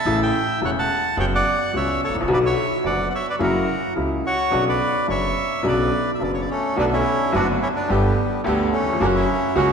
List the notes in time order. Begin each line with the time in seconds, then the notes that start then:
Already playing: E5 A5
0.05 A1 A2 C#3 E3 A3 E4
0.22 E5 G5
0.61 E1 E2 C#3 E3 A3 E4 C#5 F#5
0.79 F#5 A5
1.17 F#1 F#2 C#3 F#3 B3 F#4 C#5 G5
1.35 D5 F#5
1.73 C#2 C#3 F#3 B3 F#4 C#5 E5
2.04 A4 C#5
2.09 G#1
2.14 A1
2.20 A#1
2.27 B1 B2 D3 F#3 B3 F#4
2.33 B4 D5
2.45 C#5 E5
2.84 F#1 F#2 D3 F#3 B3 F#4 D5 F#5
3.10 F#5
3.15 C#5 E5
3.30 B4 D5
3.39 F#1 F#2 C#3 F#3 A#3 E4 F#4 A#4
3.96 C#2 C#3 F#3 A#3 E4
4.26 F#4 C#5
4.50 B1 B2 C#3 F#3 B3 D4
4.69 B4 D5
5.07 F#1 F#2 C#3 F#3 B3 D4 C#5
5.11 E5
5.62 B1 B2 C#3 F#3 B3 D4
5.68 B4 D5
6.15 E5
6.19 F#1 F#2 C#3 F#3 B3 D4
6.23 D5
6.34 C#5
6.41 D5
6.50 A3 C#4
6.76 B1 B2 D3 A3 B3 D4 F#4
6.80 B3
6.93 C#4 E4
7.31 F#1 F#2 D3 A3 B3 D4 F#4
7.62 C#4 E4
7.76 B3 D4
7.88 G1 G2 D3 G3 A3 B3 G4
8.44 D2 D3 A3 B3 G4
8.72 A3 C#4
8.80 D#2
8.86 E2
8.93 F2
8.99 F#1 F#2 C#3 F#3 A#3 C#4 D4 F#4
9.15 C#4 E4
9.55 C#2 C#3 F#3 A#3 C#4 F#4